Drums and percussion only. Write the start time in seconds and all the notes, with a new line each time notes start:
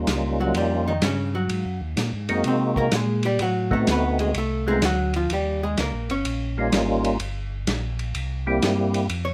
0.07 snare, hi-hat pedal, ride
0.54 ride
1.02 snare, hi-hat pedal, ride
1.49 ride
1.97 snare, hi-hat pedal, ride
2.29 ride
2.44 ride
2.76 kick
2.91 snare, hi-hat pedal, ride
3.23 ride
3.39 ride
3.71 kick
3.87 snare, hi-hat pedal, ride
4.19 ride
4.34 ride
4.82 snare, hi-hat pedal, ride
5.14 ride
5.30 ride
5.77 snare, hi-hat pedal, ride
6.10 ride
6.25 ride
6.72 snare, hi-hat pedal, ride
7.04 ride
7.20 ride
7.67 snare, hi-hat pedal, ride
7.99 ride
8.15 ride
8.62 snare, hi-hat pedal, ride
8.94 ride
9.09 ride